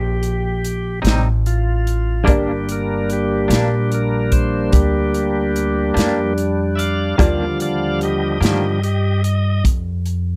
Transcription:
Already playing: A#1 D#4 G4 D#5
0.23 closed hi-hat
0.64 closed hi-hat
1.02 A1 C3 G3 C4 D#4, closed hi-hat
1.07 snare
1.46 F4, closed hi-hat
1.87 closed hi-hat
2.24 G1 G2 G3 A#3 D4 G4, kick, closed hi-hat
2.28 G3 A#3 D4 G4 A#4 D5
2.69 A#4, closed hi-hat
3.10 G4, closed hi-hat
3.48 A#1 G2 G3 A#3 D4, closed hi-hat
3.53 snare
3.92 A#4, closed hi-hat
4.32 C5, kick, closed hi-hat
4.73 D2 A#3 G4, kick, closed hi-hat
5.14 closed hi-hat
5.56 closed hi-hat
5.94 F2 G2 G3 A#3 D4, closed hi-hat
5.99 snare
6.38 closed hi-hat
6.76 D5 E5 F5, closed hi-hat
7.18 D#2 D3 D#3 F3 G3 A#3 D4 F4 G4 A#4 D5 F5, kick, closed hi-hat
7.60 D5 F5, closed hi-hat
8.01 G4 D#5, closed hi-hat
8.40 G2 D3 D#3 F3 G3 A#3 D4 G4, closed hi-hat
8.45 D#5, snare
8.83 G4 D#5, closed hi-hat
9.24 D#5, closed hi-hat
9.64 F2, kick, closed hi-hat
10.06 closed hi-hat

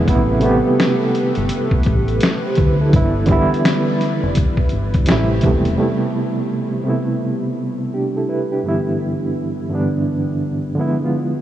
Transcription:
0.05 A1 C3 G3 A3 G4 A4 B4, kick, closed hi-hat
0.09 B3 E4
0.40 C3 G3 A3, closed hi-hat
0.44 B3 G4
0.80 snare, closed hi-hat
1.15 closed hi-hat
1.35 G1, closed hi-hat
1.49 closed hi-hat
1.71 kick
1.83 A1, kick, closed hi-hat
2.08 closed hi-hat
2.21 snare, closed hi-hat
2.47 G4 C5
2.55 D2 E4 B4, kick, closed hi-hat
2.81 E4 A4
2.90 G1 D3 E3 G3 E4 D5, kick, closed hi-hat
2.95 B3 E4
3.26 D3 E3 G3, kick, closed hi-hat
3.31 B3 E4
3.54 closed hi-hat
3.65 snare, closed hi-hat
4.01 snare, closed hi-hat
4.23 F1
4.35 kick, closed hi-hat
4.57 kick
4.69 G1, closed hi-hat
4.94 kick, closed hi-hat
5.06 A1 C3 E3 G3 A3 E4 G4 C5, snare, closed hi-hat
5.10 A3 E4
5.41 E1 C3 E3, kick, closed hi-hat
5.45 G3 A3 B3
5.65 closed hi-hat
5.76 C3 G3 A3
5.81 B3 E4
6.84 C3 G3 A3
6.88 B3 E4
7.94 D4 G4
8.17 E4 A4
8.29 E4 B4
8.52 D4 G4
8.63 G2 D3 E3 G3
8.67 B3 E4
9.69 G2 D3 E3 G3
9.74 B3 D4
10.75 D3 F3 G#3
10.80 B3 E4
11.00 D3 F3 G#3
11.04 B3 F4

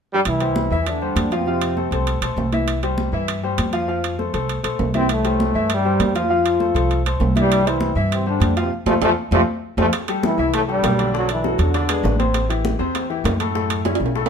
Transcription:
0.12 G2 G3
0.25 C2 E3 E4, high conga, high timbale
0.40 G3 G4 C5, high conga, high timbale
0.56 high conga
0.70 E2 E3 E4 E5
0.80 E3
0.86 D3 D4, high conga, high timbale
1.02 G3 G4 C5, high conga
1.16 F2, high conga, high timbale
1.31 C3 F3 C4 F4 F5, high conga, high timbale
1.46 F3 F4 F5, high conga
1.61 high conga, high timbale
1.77 A3 A4 C5, high conga
1.91 C2 A3 A4 C5, high conga, high timbale
2.07 high conga, high timbale
2.21 B1 A3 A4 C5, high conga, high timbale
2.36 C2, high conga, low timbale
2.52 E3 E4 E5, high conga, high timbale
2.67 high conga, high timbale
2.83 G3 G4 C5, high conga, high timbale
2.98 high conga
3.12 G2 E3 E4 E5
3.28 high conga, high timbale
3.43 G3 G4 C5, high conga
3.58 F2, high conga, high timbale
3.73 F3 F4 F5, high timbale
3.88 F3 F4 F5, high conga
4.04 high conga, high timbale
4.18 A3 A4 C5, high conga
4.33 C2 A3 A4 C5, high conga, high timbale
4.49 high conga, high timbale
4.63 B1 A3 A4 C5, high conga, high timbale
4.79 C2, high conga, low timbale
4.94 C3 E3 C4 E4 E5, high conga, high timbale
5.09 A2 A3, high conga, high timbale
5.24 G3 G4 C5, high conga, high timbale
5.40 high conga
5.54 G2 E3 E4 E5
5.70 G2 G3, high conga, high timbale
5.85 G3 G4 C5, high conga
5.99 F2, high conga, high timbale, low timbale
6.15 F3 F4 F5, high conga, high timbale
6.30 F3 F4 F5, high conga
6.45 high conga, high timbale
6.60 A3 A4 C5, high conga
6.74 C2 A3 A4 C5, high conga, high timbale
6.90 high conga, high timbale
7.05 A3 A4 C5, high conga, high timbale
7.20 C2, high conga, low timbale
7.36 G2 E3 G3 E4 E5, high conga, high timbale
7.51 high conga, high timbale
7.66 E3 G3 E4 G4 C5, high conga, high timbale
7.81 high conga
7.95 G2 E3 E4 E5
8.11 C3 C4, high conga, high timbale
8.26 D3 G3 D4 G4 C5, high conga
8.40 F2, high conga, high timbale
8.57 C3 F3 C4 F4 F5, high timbale
8.86 F2 C3 F3 A3 C4 F4 A4, high conga, high timbale
9.01 F2 C3 F3 A3 C4 F4 A4, high conga, high timbale
9.31 F2 C3 F3 A3 C4 F4 A4, high conga, high timbale
9.77 F2 C3 F3 A3 C4 F4 A4, high conga, high timbale
9.93 high bongo, high timbale
10.08 G3 G4 A4, high bongo, high conga, high timbale
10.23 E3 E4, high bongo, high conga
10.38 C2 E3 E4 E5, high bongo
10.54 A2 A3, high bongo, high conga, high timbale
10.68 G2 G3 G4 A4, high bongo, high conga
10.83 B1, high bongo, low bongo, high conga, high timbale, low timbale
10.99 D3 D4 D5, high timbale
11.13 F#2 D3 F#3 D4 D5, high bongo, high conga
11.29 E3 E4, high bongo, high conga, high timbale
11.44 F#3 F#4 A4, high bongo, high conga
11.58 E2 D3 D4, high bongo, high conga, high timbale
11.74 D3 D4 D5, high bongo, high conga, high timbale
11.89 G#3 G#4 B4, high bongo, high conga, high timbale
12.03 A1, high bongo, low bongo, high conga, low timbale
12.19 C3 C4 C5, high conga, high timbale
12.34 high bongo, high conga, high timbale
12.49 E3 E4 G4, high bongo, high conga, high timbale
12.65 high bongo, high conga
12.79 E2 C3 C4 C5, high bongo
12.95 high bongo, high conga, high timbale
13.10 E3 E4 G4, high bongo, high conga
13.24 F#2, high bongo, low bongo, high conga, high timbale, low timbale
13.40 A2 A3 A4, high timbale
13.55 A2 A3 A4, high bongo, high conga
13.70 high bongo, high conga, high timbale
13.85 C#3 C#4 E4, high bongo, high conga, high timbale
13.95 high timbale
14.00 B1, high bongo, high conga
14.06 low timbale
14.15 A2 A3 A4, high bongo, high conga
14.26 low timbale

